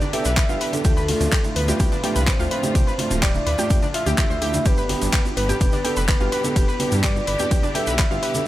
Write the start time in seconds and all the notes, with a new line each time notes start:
Already playing: B2 D3 G3 D4 G4
0.01 D4 D5, closed hi-hat, high conga, shaker
0.13 B3 D4 G4 A4 E5 G5, closed hi-hat, open hi-hat
0.25 B1 B4 B5, snare, closed hi-hat, shaker
0.37 B4 B5, kick, snare, clap, closed hi-hat, ride, high bongo, high conga, shaker
0.49 G1 B3 D4 F4 G4 F5, shaker
0.61 B4 B5, closed hi-hat, open hi-hat
0.73 B3 D4 A4, snare, closed hi-hat, high conga, shaker
0.84 D2 A2 F3 A3 D4 F4 G4 A4 G5, kick, closed hi-hat, ride, shaker
0.97 B4 B5, high bongo, shaker
1.08 A3 D4 F4, open hi-hat, high conga
1.20 D2, closed hi-hat, low conga, shaker
1.32 G4 G5, kick, snare, clap, closed hi-hat, ride, shaker
1.44 A3 D4 E4, closed hi-hat, high bongo, high conga, shaker
1.56 D2 B4 B5, closed hi-hat, open hi-hat
1.68 A3 D4 F4 G4 G5, closed hi-hat, low conga, shaker
1.80 C2 A3 D4 F4 G4 G5, kick, closed hi-hat, ride, shaker
1.92 D4 D5, snare, high conga, shaker
2.04 A3 D4 G4 G5, closed hi-hat, open hi-hat, high bongo
2.16 C2 B4 B5, closed hi-hat, shaker
2.27 B4 C5 B5, kick, snare, clap, closed hi-hat, ride, high conga, shaker
2.39 D2 A3 D4 F4 F5, closed hi-hat, low conga, shaker
2.51 B4 B5, closed hi-hat, open hi-hat, high bongo
2.63 A3 D4 G4, closed hi-hat, high conga, shaker
2.75 C2 A3 D4 F4 G4 G5, kick, closed hi-hat, ride, shaker
2.87 B4 B5, shaker
2.98 A3 D4 F4, closed hi-hat, open hi-hat, high conga
3.10 D1, closed hi-hat, high bongo, low conga, shaker
3.23 G4 D5 G5, kick, snare, clap, closed hi-hat, ride, shaker
3.34 A3 D4 E4, high conga, shaker
3.46 D2 B4 B5, closed hi-hat, open hi-hat
3.58 A3 D4 F4 G4 G5, closed hi-hat, high bongo, low conga, shaker
3.70 F2 A3 D4 F4 G4 G5, kick, closed hi-hat, ride, shaker
3.82 D4 D5, closed hi-hat, high conga, shaker
3.94 F4 E5 F5, closed hi-hat, open hi-hat
4.06 D2 A3 D4 G4 G5, snare, closed hi-hat, shaker
4.17 F4 G4 G5, kick, snare, clap, closed hi-hat, ride, high bongo, high conga, shaker
4.30 D2 C5 C6, shaker
4.42 A3 D4 E4 G4 G5, closed hi-hat, open hi-hat
4.54 A3 D4 E4, snare, closed hi-hat, high conga, shaker
4.65 G1 B2 D3 G3 B3 D4 G4 B4 G5, kick, closed hi-hat, ride, shaker
4.77 B4 B5, high bongo, shaker
4.89 B3 D4 G4, open hi-hat, high conga
5.02 G1, closed hi-hat, low conga, shaker
5.13 G4 G5, kick, snare, clap, closed hi-hat, ride, shaker
5.25 B3 D4 F4, closed hi-hat, high conga, shaker
5.37 G1 B4 B5, closed hi-hat, open hi-hat, high bongo
5.49 B3 D4 G4 G5, closed hi-hat, low conga, shaker
5.61 F1 B3 D4 G4 G5, kick, closed hi-hat, ride, shaker
5.72 D4 D5, snare, high conga, shaker
5.84 B3 D4 G4 A4 G5, closed hi-hat, open hi-hat, high bongo
5.96 F1 B4 B5, closed hi-hat, shaker
6.08 B4 B5, kick, snare, clap, closed hi-hat, ride, high conga, shaker
6.20 G1 B3 D4 F4 G4 F5, closed hi-hat, low conga, shaker
6.32 B4 B5, closed hi-hat, open hi-hat
6.44 B3 D4 A4, closed hi-hat, high bongo, high conga, shaker
6.56 F1 B3 D4 E4 G4 G5, kick, closed hi-hat, ride, shaker
6.68 B4 B5, shaker
6.80 B3 D4 G4, closed hi-hat, open hi-hat, high conga
6.92 G2, closed hi-hat, high bongo, low conga, shaker
7.03 G4 D5 G5, kick, snare, clap, closed hi-hat, ride, shaker
7.16 B3 D4 F4, high conga, shaker
7.27 G1 B4 B5, closed hi-hat, open hi-hat
7.39 B3 D4 G4 G5, closed hi-hat, low conga, shaker
7.51 B1 B3 D4 G4 G5, kick, closed hi-hat, ride, high bongo, shaker
7.63 D4 D5, closed hi-hat, high conga, shaker
7.75 B3 D4 G4 A4 E5 G5, closed hi-hat, open hi-hat
7.87 B1 B4 B5, snare, closed hi-hat, shaker
7.98 B4 B5, kick, snare, clap, closed hi-hat, ride, high bongo, high conga, shaker
8.11 G1 B3 D4 F4 G4 F5, shaker
8.23 B4 B5, closed hi-hat, open hi-hat
8.34 B3 D4 A4, snare, closed hi-hat, high conga, shaker